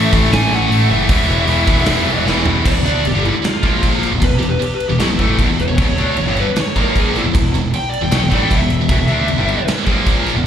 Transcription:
Already playing: overdriven electric guitar A2 E3 A3, distorted electric guitar A2 E3 A3 C#4 E4, tonewheel organ A3 E4 B4, lead electric guitar E5
0.13 picked electric bass A1, overdriven electric guitar A2 E3 A3, kick
0.25 snare
0.31 picked electric bass A1, overdriven electric guitar A2 E3 A3, lead electric guitar G#5, snare, open hi-hat
0.52 picked electric bass A1, lead electric guitar F#5
0.70 picked electric bass A1, overdriven electric guitar A2 E3 A3, open hi-hat
0.89 picked electric bass F#1, overdriven electric guitar A2 E3 A3, lead electric guitar E5
1.08 picked electric bass E1, overdriven electric guitar E2 B2 E3, tonewheel organ E3 B3 F#4, distorted electric guitar G#3 B3, kick, open hi-hat
1.12 distorted electric guitar E4
1.29 picked electric bass E1
1.47 picked electric bass E1, overdriven electric guitar E2 B2 E3, open hi-hat
1.67 picked electric bass E1, overdriven electric guitar E2 B2 E3, kick
1.78 snare
1.86 picked electric bass E1, overdriven electric guitar E2 B2 E3, snare, open hi-hat
2.07 picked electric bass E1
2.26 picked electric bass E1, overdriven electric guitar E2 B2 E3, snare
2.46 picked electric bass E1, overdriven electric guitar E2 B2 E3, floor tom
2.65 picked electric bass E1, overdriven electric guitar E2 B2, lead electric guitar D5, kick, crash
2.75 picked electric bass E1, overdriven electric guitar E2 B2
2.84 picked electric bass D2, overdriven electric guitar D3 A3 D4, crash
3.04 picked electric bass E1, overdriven electric guitar E2 B2, lead electric guitar G4, crash
3.14 picked electric bass G1, overdriven electric guitar G2 D3 G3
3.25 lead electric guitar E4, crash
3.33 muted distorted electric guitar stroke, muted overdriven electric guitar stroke, muted picked electric bass stroke
3.43 muted overdriven electric guitar stroke, muted distorted electric guitar stroke, muted picked electric bass stroke, snare, crash
3.48 lead electric guitar F4
3.62 picked electric bass A#1, overdriven electric guitar A#2 F3 A#3, kick, crash
3.83 kick, crash
4.03 snare, crash
4.11 picked electric bass E1, overdriven electric guitar E2 B2
4.20 picked electric bass E1, overdriven electric guitar E2 B2, kick, crash
4.24 lead electric guitar B4
4.37 picked electric bass E1, overdriven electric guitar E2 B2, lead electric guitar G4
4.42 crash
4.49 lead electric guitar B4
4.59 lead electric guitar G4, muted distorted electric guitar stroke, muted picked electric bass stroke, muted overdriven electric guitar stroke, crash
4.74 lead electric guitar B4
4.80 crash
4.88 picked electric bass E1, overdriven electric guitar E2 B2, lead electric guitar G4
4.98 picked electric bass B1, overdriven electric guitar B2 F#3, lead electric guitar E4, snare, crash
5.08 picked electric bass E1, overdriven electric guitar E2 B2
5.19 picked electric bass A1, overdriven electric guitar A2 E3 A3, kick, crash
5.38 picked electric bass E1, overdriven electric guitar E2 B2, kick, crash
5.48 picked electric bass E1, overdriven electric guitar E2 B2
5.59 lead electric guitar C#5, snare, crash
5.67 picked electric bass E1, overdriven electric guitar E2 B2
5.77 picked electric bass E1, overdriven electric guitar E2 B2, kick, crash
5.87 picked electric bass E1, overdriven electric guitar E2 B2
5.97 picked electric bass D2, overdriven electric guitar D3 A3 D4, crash
6.16 picked electric bass E1, overdriven electric guitar E2 B2, crash
6.26 picked electric bass G1, overdriven electric guitar G2 D3 G3
6.37 lead electric guitar B4, crash
6.45 muted overdriven electric guitar stroke, muted picked electric bass stroke, muted distorted electric guitar stroke
6.56 lead electric guitar C#5, muted overdriven electric guitar stroke, muted picked electric bass stroke, muted distorted electric guitar stroke, snare, crash
6.75 picked electric bass A#1, overdriven electric guitar A#2 F3 A#3, kick, crash
6.81 lead electric guitar A#4
6.96 lead electric guitar G#4, kick, crash
7.16 lead electric guitar E4, snare, crash
7.24 picked electric bass E1, overdriven electric guitar E2 B2
7.34 picked electric bass E1, overdriven electric guitar E2 B2, kick, crash
7.52 picked electric bass E1, overdriven electric guitar E2 B2, crash
7.71 muted overdriven electric guitar stroke, muted picked electric bass stroke, muted distorted electric guitar stroke, crash
7.75 lead electric guitar G5
7.89 lead electric guitar D5, crash
8.02 picked electric bass E1, overdriven electric guitar E2 B2, lead electric guitar G5
8.11 picked electric bass B1, overdriven electric guitar B2 F#3, snare, crash
8.16 lead electric guitar G5
8.21 picked electric bass E1, overdriven electric guitar E2 B2
8.30 picked electric bass A1, overdriven electric guitar A2 E3 A3, lead electric guitar D5, kick, crash
8.42 lead electric guitar G5
8.50 picked electric bass E1, overdriven electric guitar E2 B2, kick, crash
8.57 picked electric bass E1, overdriven electric guitar E2, lead electric guitar E5
8.61 overdriven electric guitar B2
8.70 crash
8.78 picked electric bass E1, overdriven electric guitar E2 B2
8.88 picked electric bass E1, overdriven electric guitar E2 B2, tonewheel organ E3 B3 F#4, kick, crash
8.98 picked electric bass E1, overdriven electric guitar E2 B2
9.05 picked electric bass D2, overdriven electric guitar D3 A3 D4, crash
9.10 distorted electric guitar D3 A3
9.26 picked electric bass E1, overdriven electric guitar E2 B2, crash
9.36 picked electric bass G1, overdriven electric guitar G2 D3 G3
9.48 crash
9.56 muted overdriven electric guitar stroke, muted picked electric bass stroke, muted distorted electric guitar stroke
9.66 muted picked electric bass stroke, muted overdriven electric guitar stroke, muted distorted electric guitar stroke, snare, crash
9.85 picked electric bass A#1, overdriven electric guitar A#2 F3 A#3, tonewheel organ A#3 F4 C5, kick, crash
10.06 kick, crash
10.26 snare, crash
10.35 picked electric bass E1, overdriven electric guitar E2 B2, tonewheel organ E4 B4 F#5

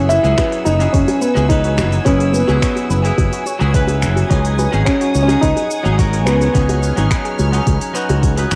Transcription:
Already playing: fretless electric bass F#1, clean electric guitar F#3 B3 C#4 E4 G#4, grand piano C#4, string section B4 F#5 G#5 E6, synth texture G#5
0.09 grand piano E4, synth pluck C#5, shaker
0.22 fretless electric bass C#2, clean electric guitar F#3 B3 C#4 E4 G#4, shaker
0.38 synth pluck B4, finger snap, kick, open hi-hat, high bongo, shaker
0.52 synth pluck G#4, open hi-hat, shaker
0.65 fretless electric bass F#1, grand piano D#4, high bongo, shaker
0.79 clean electric guitar F#3 B3 C#4 E4 G#4, synth pluck F#4, open hi-hat, shaker
0.93 fretless electric bass F#1, grand piano C#4, synth pluck C#5, kick, open hi-hat, shaker
1.08 open hi-hat, high bongo, shaker
1.21 grand piano B3, synth pluck B4, shaker
1.35 fretless electric bass C#2, clean electric guitar F#3 B3 C#4 E4 G#4, synth pluck G#4, high bongo, shaker
1.49 clean electric guitar E3 F#3 B3 C#4 B4, grand piano D#4, kick, open hi-hat, shaker
1.64 synth pluck F#4, open hi-hat, shaker
1.78 fretless electric bass F#1, synth pluck C#5, finger snap, high bongo, shaker
1.92 open hi-hat, shaker
2.05 fretless electric bass F#1, clean electric guitar F#3 B3 C#4 E4 G#4, grand piano C#4, synth pluck B4, kick, open hi-hat, high bongo, shaker
2.20 synth pluck G#4, open hi-hat, shaker
2.33 grand piano B3, shaker
2.47 fretless electric bass C#2, clean electric guitar F#3 B3 C#4 E4 G#4, synth pluck F#4, high bongo, shaker
2.62 synth pluck C#5, finger snap, kick, open hi-hat, shaker
2.76 open hi-hat, high bongo, shaker
2.90 fretless electric bass F#1, synth pluck B4, shaker
3.03 clean electric guitar F#3 B3 C#4 E4 G#4, synth pluck G#4, open hi-hat, shaker
3.18 fretless electric bass F#1, kick, open hi-hat, high bongo, shaker
3.33 synth pluck F#4, open hi-hat, shaker
3.46 synth pluck C#5, high bongo, shaker
3.59 fretless electric bass C#2, clean electric guitar F#3 B3 C#4 E4 G#4, shaker
3.73 clean electric guitar F#3 B3 C#4 E4 B4, synth pluck B4, kick, open hi-hat, shaker
3.87 synth pluck G#4, open hi-hat, high bongo, shaker
4.02 fretless electric bass F#1, finger snap, shaker
4.16 synth pluck F#4, open hi-hat, high bongo, shaker
4.29 fretless electric bass C#2, clean electric guitar F#3 B3 C#4 D#4 G#4, synth pluck C#5, string section C#5 F#5 G#5 D#6, kick, open hi-hat, shaker
4.45 open hi-hat, shaker
4.59 synth pluck B4, high bongo, shaker
4.71 fretless electric bass G#1, clean electric guitar F#3 B3 C#4 D#4 G#4, synth pluck G#4, shaker
4.85 grand piano C#4, finger snap, kick, open hi-hat, high bongo, shaker
5.01 synth pluck F#4, open hi-hat, shaker
5.15 fretless electric bass C#2, synth pluck C#5, shaker
5.23 grand piano C#4
5.27 clean electric guitar F#3 B3 C#4 D#4 G#4, open hi-hat, high bongo, shaker
5.41 fretless electric bass C#2, grand piano D#4, synth pluck B4, kick, open hi-hat, shaker
5.56 synth pluck G#4, open hi-hat, high bongo, shaker
5.71 shaker
5.83 fretless electric bass G#1, clean electric guitar F#3 B3 C#4 D#4 G#4, synth pluck F#4, shaker
5.97 clean electric guitar F#3 B3 C#4 D#4 A#4, synth pluck C#5, kick, open hi-hat, high bongo, shaker
6.13 open hi-hat, shaker
6.25 fretless electric bass C#2, grand piano B3, synth pluck B4, finger snap, high bongo, shaker
6.41 synth pluck G#4, open hi-hat, shaker
6.53 fretless electric bass C#2, clean electric guitar F#3 B3 C#4 D#4 G#4, string section F6, kick, open hi-hat, shaker
6.69 synth pluck F#4, open hi-hat, high bongo, shaker
6.83 synth pluck C#5, shaker
6.96 fretless electric bass G#1, clean electric guitar F#3 B3 C#4 D#4 G#4, open hi-hat, high bongo, shaker
7.11 synth pluck B4, finger snap, kick, open hi-hat, shaker
7.25 synth pluck G#4, open hi-hat, shaker
7.39 fretless electric bass C#2, high bongo, shaker
7.51 clean electric guitar F#3 B3 C#4 D#4 G#4, synth pluck F#4, open hi-hat, shaker
7.66 fretless electric bass C#2, synth pluck C#5, kick, open hi-hat, high bongo, shaker
7.81 open hi-hat, shaker
7.93 clean electric guitar F#3 B3 C#4 D#4 F#4, synth pluck B4, shaker
8.09 fretless electric bass C#2, synth pluck G#4, open hi-hat, high bongo, shaker
8.23 kick, open hi-hat, shaker
8.36 clean electric guitar F#3 B3 C#4 D#4 B4, synth pluck F#4, open hi-hat, high bongo, shaker
8.51 fretless electric bass G#1, synth pluck C#5, finger snap, shaker

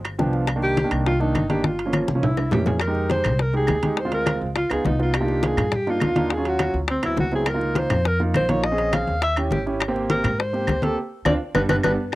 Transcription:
Already playing: upright bass G1
0.04 high bongo, high conga, high timbale, claves
0.18 upright bass C2, grand piano F3 B3 D4 G5, high bongo, low bongo, high conga
0.33 grand piano F5, high bongo, high conga
0.47 high bongo, high conga, high timbale, claves
0.56 grand piano D#3 A#3 D4
0.62 alto saxophone G4, high bongo, high conga
0.77 high bongo, high conga, high timbale
0.84 grand piano D#3 A#3 D4
0.91 upright bass C2, high conga, high timbale, claves
1.06 alto saxophone F4, high bongo, high conga
1.20 grand piano D#3 A#3 D4, alto saxophone D#4, high bongo, high conga
1.35 upright bass G1, high bongo, low bongo, high conga, high timbale, claves
1.49 grand piano D#3 A#3 D4, alto saxophone G4, high bongo, high conga, high timbale
1.64 alto saxophone F4, high bongo, high conga
1.79 high bongo, high timbale
1.86 grand piano F3 A#3 C#4
1.93 high bongo, high conga, high timbale, claves
2.08 upright bass C2, high bongo, high conga
2.15 grand piano F3 A#3 C#4
2.23 alto saxophone E4, low conga, high timbale
2.37 low bongo, high timbale, claves
2.51 upright bass F2, grand piano E3 A#3 C#4, alto saxophone G4, low bongo, low conga, low timbale
2.66 alto saxophone G#4, low bongo, low conga, low timbale
2.80 alto saxophone A#4, high bongo, high conga, high timbale, claves
2.87 grand piano G#3 D#4 G4
2.95 high bongo, high conga
3.10 alto saxophone C5, high bongo, high conga, high timbale
3.24 upright bass C2, high conga, low conga, high timbale, claves
3.39 alto saxophone A#4, high bongo, high conga
3.53 grand piano G#3 D#4 G4, alto saxophone G#4, high bongo, high conga
3.67 upright bass D2, high bongo, low bongo, high conga, high timbale, low timbale, claves
3.82 grand piano G#3 D#4 G4, high bongo, high conga, high timbale
3.97 alto saxophone C5, high bongo, high conga
4.05 grand piano G#3 C4 F4
4.12 alto saxophone A#4, high bongo, high conga, high timbale
4.26 high bongo, high conga, high timbale, claves
4.41 upright bass C#2, high conga
4.56 alto saxophone F4, high bongo, high conga, high timbale
4.70 upright bass C#2, grand piano B3 D#4 F4, alto saxophone G#4, high bongo, high conga, high timbale, claves
4.85 upright bass C2, alto saxophone D#4, high bongo, low bongo, high conga, low timbale
4.99 grand piano B3 D#4 F4, alto saxophone F4, high bongo, high conga
5.14 alto saxophone G4, high bongo, high conga, high timbale, claves
5.21 grand piano A#3 D4 D#4 F4
5.28 high bongo, high conga
5.43 alto saxophone G#4, high bongo, high conga, high timbale
5.57 upright bass G2, high conga, low conga, high timbale, claves
5.72 alto saxophone G4, high bongo, high conga, low conga
5.87 grand piano A#3 D4 D#4 F4, alto saxophone F4, high bongo, high conga
6.00 upright bass D#2, high bongo, low bongo, high conga, high timbale, claves
6.16 grand piano A#3 D4 D#4 F4, high bongo, high conga, high timbale
6.30 alto saxophone G#4, high bongo, high conga
6.37 grand piano F#3 C#4 F4
6.45 alto saxophone F#4, high bongo, high conga, high timbale
6.59 high bongo, high conga, high timbale, claves
6.74 upright bass D2, high conga
6.88 alto saxophone C4, high bongo, high conga, high timbale
7.03 upright bass D2, grand piano F#3 B3 C4 E4, alto saxophone E4, high bongo, high conga, high timbale, claves
7.17 upright bass C#2, alto saxophone F#4, high bongo, low bongo, high conga, low timbale
7.32 grand piano F#3 B3 C4 E4, alto saxophone G#4, high bongo, high conga
7.46 alto saxophone A#4, high bongo, high conga, high timbale, claves
7.54 grand piano A#3 D#4 F4
7.61 high bongo, high conga
7.75 alto saxophone C5, high bongo, high conga, high timbale
7.90 upright bass F2, high conga, low conga, high timbale, claves
8.05 alto saxophone A#4, high bongo, high conga
8.20 grand piano A#3 D#4 F4, high bongo, high conga
8.34 upright bass A#1, alto saxophone C5, high bongo, low bongo, high conga, high timbale, claves
8.49 grand piano A#3 D#4 F4, alto saxophone C#5, high bongo, high conga, high timbale
8.63 alto saxophone D#5, high bongo, high conga
8.71 grand piano C4 C#4 G#4
8.78 high bongo, high conga, high timbale
8.93 alto saxophone F5, high bongo, high conga, high timbale, claves
9.07 upright bass D#2, high conga
9.22 alto saxophone E5, high bongo, high conga, high timbale
9.36 grand piano C#4 E4 G4, high bongo, high conga, high timbale, claves
9.51 upright bass G#1, alto saxophone G4, high bongo, low bongo, high conga, low timbale
9.66 grand piano C#4 E4 G4, high bongo, high conga
9.80 high bongo, high conga, high timbale, claves
9.88 grand piano A#3 C4 G4
9.96 high bongo, high conga
10.10 alto saxophone A#4, high bongo, high conga, high timbale
10.24 upright bass G#2, high conga, low conga, high timbale, claves
10.38 alto saxophone C5, high bongo, high conga
10.53 grand piano A#3 C4 G4, high bongo, high conga
10.67 upright bass D2, high bongo, low bongo, high conga, high timbale, claves
10.82 grand piano A#3 C4 G4, alto saxophone A4, high bongo, high conga, high timbale
11.25 upright bass D2, grand piano C4 D4 F4, alto saxophone D5, high bongo, high conga, high timbale, claves
11.54 upright bass G1, grand piano G3 B3 D4, alto saxophone B4, high bongo, high conga, high timbale, claves
11.69 upright bass G1, grand piano G3 B3 D4, alto saxophone B4, high bongo, high conga, high timbale, claves
11.83 upright bass G1, grand piano G3 B3 D4, alto saxophone B4, high bongo, high conga, high timbale, claves
12.12 claves

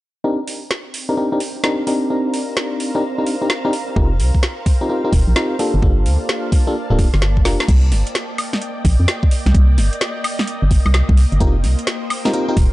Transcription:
0.24 fm electric piano C4 D4 D#4 G4 A#4, string machine C4 A#4 D5 G5 A#5, ambient pad C5
0.47 open hi-hat
0.58 ambient pad F5
0.71 snare
0.94 open hi-hat
1.09 fm electric piano C4 D4 D#4 G4 A#4, ambient pad A#5
1.17 fm electric piano C4 D4 D#4 G4 A#4
1.32 fm electric piano C4 D4 D#4 G4 A#4
1.40 open hi-hat
1.64 fm electric piano C4 D4 D#4 G4 A#4, snare
1.87 fm electric piano C4 D4 D#4 G4 A#4, open hi-hat
2.10 fm electric piano C4 D4 D#4 G4 A#4, string machine F5
2.34 open hi-hat
2.57 snare
2.80 open hi-hat
2.95 fm electric piano C4 D4 D#4 G4 A#4
3.18 fm electric piano C4 D4 D#4 G4 A#4
3.27 open hi-hat
3.42 fm electric piano C4 D4 D#4 G4 A#4
3.50 snare
3.65 fm electric piano C4 D4 D#4 G4 A#4
3.73 open hi-hat
3.96 fm bass F1, fm electric piano C4 D#4 F4 G4 A#4, string machine C5 G5, kick
4.20 fm bass C2, open hi-hat
4.35 kick
4.43 snare
4.66 kick, open hi-hat
4.81 fm electric piano C4 D#4 F4 G4 A#4
4.89 fm electric piano C4 D#4 F4 G4 A#4
5.04 fm electric piano C4 D#4 F4 G4 A#4
5.13 fm bass D#1, kick, open hi-hat
5.28 fm bass A#1
5.36 fm electric piano C4 D#4 F4 G4 A#4, snare
5.59 string machine A#3 D5 F5 A5, fm electric piano A#3 D4 F4 G4 A4, open hi-hat
5.74 fm bass G1
5.82 fm bass G1, fm electric piano A#3 D4 F4 G4 A4, kick
6.06 fm bass D2, open hi-hat
6.29 snare
6.52 kick, open hi-hat
6.67 fm electric piano A#3 D4 F4 G4 A4
6.90 fm bass D1, fm electric piano A#3 D4 F4 G4 A4
6.99 kick, open hi-hat
7.14 fm bass G1, snare
7.22 snare
7.37 kick
7.45 fm bass F1, fm electric piano A#3 D4 F4 G4 A#4, snare, open hi-hat
7.60 snare
7.68 fm bass C2, string machine A#3 D5 D#5 G5, kick, closed hi-hat, crash
7.92 fm bass G1, snare, open hi-hat
8.07 closed hi-hat
8.15 snare, closed hi-hat
8.38 open hi-hat, high woodblock
8.53 snare
8.62 closed hi-hat
8.85 fm bass A#1, kick, open hi-hat
9.00 fm bass F2
9.08 snare, closed hi-hat
9.23 kick
9.31 open hi-hat
9.46 fm bass C2, snare, closed hi-hat
9.54 fm bass C2, kick, closed hi-hat
9.78 fm bass G1, snare, open hi-hat
9.93 closed hi-hat
10.01 snare, closed hi-hat
10.24 open hi-hat, high woodblock
10.39 snare
10.47 closed hi-hat
10.62 fm bass G1
10.71 kick, open hi-hat
10.86 fm bass C2, high woodblock
10.94 snare, closed hi-hat, high woodblock
11.09 fm bass C2, kick
11.17 open hi-hat
11.32 fm bass G1, closed hi-hat
11.40 fm bass F1, fm electric piano C4 D#4 F4 G4 A#4, string machine C5 G5, kick, closed hi-hat
11.64 fm bass C2, snare, open hi-hat
11.79 closed hi-hat
11.87 snare, closed hi-hat
12.10 open hi-hat, high woodblock
12.25 fm electric piano C4 D#4 F4 G4 A#4, snare
12.34 fm electric piano C4 D#4 F4 G4 A#4, closed hi-hat
12.48 fm electric piano C4 D#4 F4 G4 A#4
12.57 fm bass D#1, kick, open hi-hat

